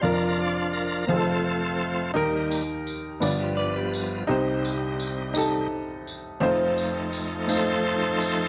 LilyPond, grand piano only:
<<
  \new Staff \with { instrumentName = "Grand piano" } { \time 6/8 \key f \mixolydian \tempo 4. = 56 <d' f' bes'>4 r8 <c' f' aes' a'>4 r8 | <ees' g' bes'>4 r8 <b d' f' g' d''>4 r8 | <ees' g' c''>4 r8 <ees' g' a'>4 r8 | <a c' ees' f' c''>4 r8 <a c' ees' f' c''>4 r8 | }
  \new Staff \with { instrumentName = "Grand piano" } { \clef bass \time 6/8 \key f \mixolydian <f,, f,>4. <f,, f,>4. | <ees, ees>4. <g,, g,>4. | <c, c>2. | <f,, f,>2. | }
>>